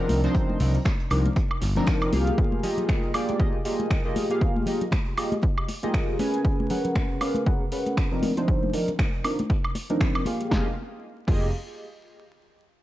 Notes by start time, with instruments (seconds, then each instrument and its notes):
0.00 analog polysynth F3 C4 D4 D#4 A#4
0.09 analog synth bass C2, closed hi-hat, open hi-hat, high conga
0.23 analog polysynth F3 C4 D4 D#4 C5, snare, closed hi-hat, muted conga
0.35 kick, closed hi-hat
0.49 high conga
0.60 analog synth bass C2, analog polysynth F3 C4 D4 D#4 A#4, open hi-hat, low conga
0.74 closed hi-hat, low conga
0.85 finger snap, kick, snare, closed hi-hat, high conga
1.00 closed hi-hat
1.10 analog synth bass C2, analog polysynth F3 C4 D4 D#4 A#4, closed hi-hat, open hi-hat, muted conga, high woodblock
1.26 closed hi-hat, high conga
1.36 finger snap, kick, closed hi-hat, muted conga
1.51 high woodblock
1.61 analog synth bass G1, snare, closed hi-hat, open hi-hat, muted conga
1.76 analog polysynth F3 C4 D4 D#4 A#4, snare, closed hi-hat, high conga
1.86 finger snap, kick, snare, closed hi-hat
2.02 closed hi-hat, high woodblock
2.12 analog synth bass C2, analog polysynth A#3 F4 G4 G#4 F5, closed hi-hat, open hi-hat, muted conga, high conga
2.27 closed hi-hat
2.38 kick, closed hi-hat
2.52 high conga
2.63 analog polysynth A#3 F4 G4 G#4 D#5, open hi-hat, low conga
2.77 closed hi-hat, low conga
2.89 finger snap, kick, closed hi-hat, high conga
3.14 analog polysynth A#3 F4 G4 G#4 D5, open hi-hat, muted conga, high woodblock
3.29 closed hi-hat, high conga
3.39 analog polysynth A#3 F4 G4 G#4 D#5, kick, closed hi-hat
3.65 analog polysynth A#3 F4 G4 G#4 D#5, open hi-hat
3.80 closed hi-hat, high conga
3.90 finger snap, kick, closed hi-hat
4.05 analog polysynth A#3 F4 G4 G#4 D#5
4.16 open hi-hat, high conga
4.30 analog polysynth A#3 F4 G4 G#4 F5, closed hi-hat, muted conga
4.41 kick, closed hi-hat
4.56 high conga
4.66 analog polysynth A#3 F4 G4 G#4 D#5, open hi-hat, low conga
4.81 closed hi-hat, low conga
4.91 finger snap, kick, closed hi-hat, high conga
5.17 analog polysynth A#3 F4 G4 G#4 D#5, open hi-hat, high woodblock
5.32 closed hi-hat, high conga
5.42 kick, closed hi-hat, muted conga
5.58 high woodblock
5.68 open hi-hat, muted conga
5.83 analog polysynth A#3 F4 G4 G#4 D#5, closed hi-hat, high conga
5.94 finger snap, kick, closed hi-hat
6.19 analog polysynth C#4 G#4 A#4 B4 G#5, open hi-hat, muted conga, high conga
6.34 closed hi-hat
6.45 kick, closed hi-hat
6.60 high conga
6.70 analog polysynth C#4 G#4 A#4 B4 F#5, open hi-hat, low conga
6.85 closed hi-hat, low conga
6.95 finger snap, kick, closed hi-hat, high conga
7.21 analog polysynth C#4 G#4 A#4 B4 F5, open hi-hat, muted conga, high woodblock
7.34 closed hi-hat, high conga
7.46 analog polysynth C#4 G#4 A#4 B4 F#5, kick, closed hi-hat
7.72 analog polysynth C#4 G#4 A#4 B4 F#5, open hi-hat
7.86 closed hi-hat, high conga
7.97 finger snap, kick, closed hi-hat
8.12 analog polysynth F3 C4 D4 D#4 A#4
8.23 open hi-hat, high conga
8.37 analog polysynth F3 C4 D4 D#4 C5, closed hi-hat, muted conga
8.48 kick, closed hi-hat
8.63 high conga
8.73 analog polysynth F3 C4 D4 D#4 A#4, open hi-hat, low conga
8.88 closed hi-hat, low conga
8.99 finger snap, kick, closed hi-hat, high conga
9.24 analog polysynth F3 C4 D4 D#4 A#4, open hi-hat, muted conga, high woodblock
9.39 closed hi-hat, high conga
9.50 finger snap, kick, closed hi-hat, muted conga
9.64 high woodblock
9.75 open hi-hat, muted conga
9.90 analog polysynth F3 C4 D4 D#4 A#4, closed hi-hat, high conga
10.01 finger snap, kick, closed hi-hat
10.15 high woodblock
10.26 analog polysynth A#3 F4 G4 G#4 F5, open hi-hat, muted conga, high conga
10.41 closed hi-hat
10.51 analog synth bass F1, analog polysynth A#3 F4 G4 G#4 D#5, kick, snare
11.27 analog synth bass F1, analog polysynth A#3 F4 G4 G#4 D#5, kick, crash